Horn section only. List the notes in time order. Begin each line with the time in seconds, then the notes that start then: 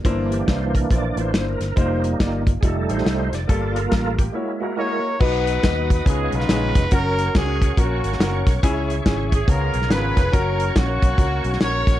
4.78 E4 A#4 C#5
5.20 D#4 F#4 B4
5.93 B4
6.08 B3 F4 G#4
6.34 D#4 F4 B4
6.92 C#4 F#4 A#4
7.36 C#4 G#4
7.79 A#3 C#4 F#4
9.34 G#4
9.49 F4 A#4
9.91 F4 G#4 B4
10.33 C#4 F#4 A#4
10.77 A#3 C#4 F#4
11.61 F#4 A#4 C#5